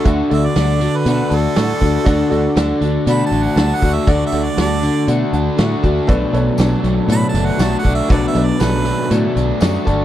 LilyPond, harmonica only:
\new Staff \with { instrumentName = "Harmonica" } { \time 4/4 \key d \major \tempo 4 = 119 r8 e''16 d''4 b'16 b'8 a'4.~ | a'4. r8 \tuplet 3/2 { b''8 a''8 fis''8 a''8 fis''8 e''8 } | \tuplet 3/2 { d''8 e''8 d''8 } d''4 r2 | r2 \tuplet 3/2 { b''8 a''8 fis''8 a''8 fis''8 e''8 } |
\tuplet 3/2 { d''8 e''8 d''8 } b'4 r2 | }